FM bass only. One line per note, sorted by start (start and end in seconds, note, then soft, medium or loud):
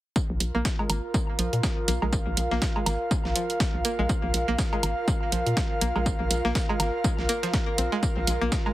0.30 0.38 A#1 loud
0.40 0.51 A#1 loud
0.55 0.63 A#1 medium
0.90 1.00 G#1 loud
1.39 1.50 A#1 medium
1.53 1.61 A#2 medium
1.88 1.99 A#1 loud
2.02 2.20 A#1 loud
2.27 2.35 A#1 loud
2.37 2.48 A#1 loud
2.51 2.59 A#1 medium
2.86 2.97 G#1 loud
3.25 3.33 A#1 medium
3.74 3.82 A#1 medium
3.99 4.07 A#1 medium
4.23 4.31 A#1 loud
4.34 4.45 A#1 loud
4.48 4.56 A#1 medium
4.83 4.94 G#1 loud
5.32 5.43 A#1 medium
5.46 5.54 A#2 medium
5.81 5.92 A#1 loud
5.96 6.14 A#1 loud
6.20 6.28 A#1 loud
6.30 6.41 A#1 loud
6.45 6.53 A#1 medium
6.80 6.91 G#1 loud
7.19 7.27 A#1 medium
7.78 7.89 A#1 medium
8.17 8.25 A#1 loud
8.27 8.38 A#1 loud
8.42 8.49 A#1 medium